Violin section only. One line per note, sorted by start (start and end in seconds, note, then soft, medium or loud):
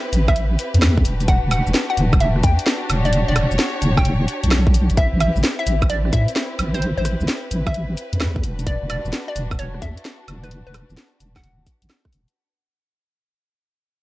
0.00 1.02 C4 medium
0.00 1.02 E4 medium
0.00 12.32 G4 medium
0.00 2.86 B4 medium
1.05 4.93 D4 medium
1.05 4.93 F#4 medium
2.90 4.95 C#5 loud
4.97 8.40 C4 medium
4.97 8.40 E4 medium
4.97 12.32 B4 medium
8.43 12.32 D4 medium
8.43 12.32 F#4 medium